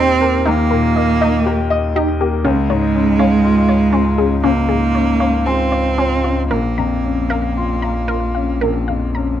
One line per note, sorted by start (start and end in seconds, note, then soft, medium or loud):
0.00 0.42 D#2 medium
0.00 2.47 D#2 medium
0.00 0.72 A#2 medium
0.00 0.22 A#3 medium
0.00 0.49 C4 loud
0.00 0.11 D#4 medium
0.00 1.45 G4 medium
0.00 1.21 D#5 medium
0.21 0.62 A#3 medium
0.21 0.36 A#4 medium
0.45 2.41 D#2 medium
0.45 1.97 A#3 loud
0.45 0.61 D#4 medium
0.71 1.12 A#2 soft
0.71 0.86 A#4 medium
0.96 1.36 A#3 medium
0.96 1.11 D#5 medium
1.21 1.37 D#4 medium
1.21 1.61 D#5 medium
1.45 1.86 G4 medium
1.45 1.62 A#4 medium
1.70 2.10 D#5 medium
1.70 1.86 D#5 medium
1.96 2.11 D#4 loud
1.96 2.35 G4 soft
2.21 2.45 A#3 soft
2.21 2.35 G4 medium
2.44 4.39 C#2 medium
2.44 6.53 C#2 medium
2.44 4.40 G#3 loud
2.44 2.59 C#4 medium
2.70 3.09 G#2 medium
2.70 2.85 C#5 medium
2.95 3.34 C#4 medium
3.19 3.34 C#4 medium
3.19 3.59 F5 medium
3.44 3.83 F4 medium
3.69 3.83 C#5 medium
3.69 4.08 F5 soft
3.93 4.08 C#4 medium
3.93 4.34 F4 soft
4.18 4.59 C#4 soft
4.18 4.33 G#4 medium
4.44 6.47 C#2 soft
4.44 5.47 A#3 medium
4.44 4.59 C#4 medium
4.69 5.10 G#2 soft
4.69 4.84 G#4 medium
4.95 5.36 C#4 soft
4.95 5.10 C#5 medium
5.20 5.36 C#4 medium
5.20 5.61 F5 soft
5.46 6.50 C4 medium
5.46 5.87 F4 soft
5.46 5.62 G#4 medium
5.71 5.87 C#5 medium
5.71 6.13 F5 soft
5.98 6.14 C#4 medium
5.98 6.40 F4 soft
6.24 6.51 C#4 soft
6.24 6.40 F4 medium
6.51 8.58 A#1 soft
6.51 9.40 A#1 medium
6.51 9.40 A#3 medium
6.51 6.67 A#4 medium
6.78 7.20 F2 soft
6.78 6.93 A#5 soft
7.04 7.46 C#4 soft
7.30 7.46 A#4 medium
7.30 7.72 F5 soft
7.57 7.98 F4 soft
7.82 8.25 F5 soft
7.82 7.98 A#5 medium
8.08 8.52 F4 soft
8.08 8.24 A#4 medium
8.35 8.78 C#4 soft
8.35 8.51 F5 soft
8.61 9.40 A#1 soft
8.61 8.78 A#4 medium
8.88 9.32 F2 soft
8.88 9.04 F5 medium
9.15 9.40 C#4 soft
9.15 9.31 A#5 soft